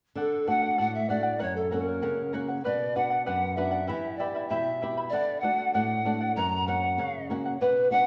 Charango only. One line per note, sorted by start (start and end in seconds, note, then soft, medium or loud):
0.16 0.45 A4 medium
0.16 0.46 D5 medium
0.16 0.47 F#5 medium
0.47 0.62 A4 soft
0.47 0.62 D5 soft
0.47 0.61 F#5 soft
0.62 0.77 D5 soft
0.62 0.77 F#5 soft
0.78 1.07 A4 medium
0.78 1.07 D5 medium
0.78 1.09 F#5 medium
1.09 1.24 A4 medium
1.09 1.23 D5 medium
1.09 1.22 F#5 medium
1.23 1.40 D5 soft
1.23 1.39 F#5 soft
1.39 1.70 A#4 medium
1.39 1.70 C#5 medium
1.39 1.71 F#5 medium
1.71 1.86 A#4 soft
1.71 1.87 C#5 medium
1.71 1.85 F#5 medium
1.86 2.01 C#5 soft
1.86 2.01 F#5 soft
2.02 2.31 A#4 medium
2.02 2.32 C#5 medium
2.02 2.33 F#5 medium
2.32 2.48 A#4 medium
2.32 2.48 C#5 medium
2.32 2.47 F#5 medium
2.48 2.64 C#5 soft
2.48 2.64 F#5 soft
2.64 2.94 B4 medium
2.64 2.95 D5 medium
2.64 2.95 F#5 medium
2.95 3.11 B4 soft
2.95 3.11 D5 medium
2.95 3.09 F#5 medium
3.10 3.25 D5 soft
3.10 3.26 F#5 soft
3.26 3.56 B4 medium
3.26 3.56 D5 medium
3.26 3.57 F#5 medium
3.57 3.72 B4 medium
3.57 3.72 D5 medium
3.57 3.70 F#5 medium
3.71 3.88 D5 soft
3.71 3.87 F#5 soft
3.87 4.19 E4 medium
3.87 4.19 G4 medium
3.87 4.19 E5 medium
3.87 4.18 G5 medium
3.87 4.19 B5 medium
4.19 4.35 E4 soft
4.19 4.34 E5 soft
4.19 4.35 G5 soft
4.19 4.33 B5 medium
4.35 4.50 E4 soft
4.35 4.50 E5 soft
4.35 4.50 B5 soft
4.50 4.81 E4 medium
4.50 4.81 G4 medium
4.50 4.81 E5 medium
4.50 4.80 G5 medium
4.50 4.82 B5 medium
4.82 4.97 E4 medium
4.82 4.97 E5 medium
4.82 4.97 G5 soft
4.82 4.96 B5 medium
4.97 5.14 E4 soft
4.97 5.12 E5 soft
4.97 5.12 B5 soft
5.12 5.41 A4 medium
5.12 5.42 D5 medium
5.12 5.43 F#5 medium
5.43 5.58 A4 soft
5.43 5.58 D5 soft
5.43 5.57 F#5 soft
5.58 5.73 D5 soft
5.58 5.73 F#5 soft
5.74 6.04 A4 medium
5.74 6.05 D5 medium
5.74 6.05 F#5 medium
6.05 6.21 A4 soft
6.05 6.21 D5 medium
6.05 6.20 F#5 medium
6.21 6.37 D5 soft
6.21 6.36 F#5 soft
6.37 6.66 A#4 medium
6.37 6.67 C#5 medium
6.37 6.68 F#5 medium
6.67 6.83 A#4 soft
6.67 6.83 C#5 medium
6.67 6.82 F#5 soft
6.83 6.98 C#5 soft
6.83 6.99 F#5 soft
6.99 7.29 A#4 medium
6.99 7.29 C#5 medium
6.99 7.30 F#5 medium
7.30 7.45 A#4 soft
7.30 7.46 C#5 medium
7.30 7.44 F#5 medium
7.46 7.62 C#5 soft
7.46 7.61 F#5 medium
7.61 7.92 B4 medium
7.61 7.92 D5 medium
7.61 7.92 F#5 medium
7.93 8.07 B4 soft
7.93 8.07 D5 medium
7.93 8.07 F#5 medium